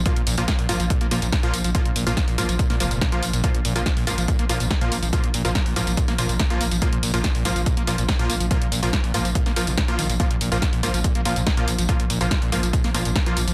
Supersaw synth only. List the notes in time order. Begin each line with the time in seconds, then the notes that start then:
0.06 F3 A#3 F4
0.38 F3 A#3 F4
0.69 F3 A#3 F4
1.11 F3 A#3 F4
1.43 F3 A#3 F4
1.75 F3 A#3 F4
2.07 F3 A#3 F4
2.38 F3 A#3 F4
2.80 F3 A#3 F4
3.12 F3 A#3 F4
3.44 F3 A#3 F4
3.76 F3 A#3 F4
4.07 F3 A#3 F4
4.49 F3 A#3 F4
4.81 F3 A#3 F4
5.13 F3 A#3 F4
5.45 F3 A#3 F4
5.76 F3 A#3 F4
6.19 F3 A#3 F4
6.50 F3 A#3 F4
6.82 F3 A#3 F4
7.14 F3 A#3 F4
7.45 F3 A#3 F4
7.87 F3 A#3 F4
8.19 F3 A#3 F4
8.51 F3 A#3 F4
8.83 F3 A#3 F4
9.14 F3 A#3 F4
9.56 F3 A#3 F4
9.88 F3 A#3 F4
10.20 F3 A#3 F4
10.52 F3 A#3 F4
10.83 F3 A#3 F4
11.25 F3 A#3 F4
11.57 F3 A#3 F4
11.89 F3 A#3 F4
12.21 F3 A#3 F4
12.52 F3 A#3 F4
12.94 F3 A#3 F4
13.26 F3 A#3 F4